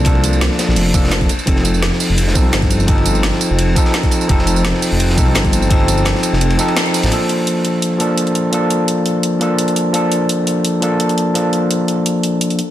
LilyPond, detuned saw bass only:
\new Staff \with { instrumentName = "Detuned saw bass" } { \clef bass \time 4/4 \key bes \major \tempo 4 = 170 c,4~ c,16 r8 bes,,16 f,,8 f,,4 r8 | f,,4~ f,,16 r8 f,,8. c,8 g,,4~ | g,,4~ g,,16 r8 f,,8. r4. | f,,4~ f,,16 r8 f,,8. c,8 g,,4~ |
g,,4~ g,,16 r8 f,,8. r4 r16 a,,16 | r1 | r1 | r1 |
r1 | }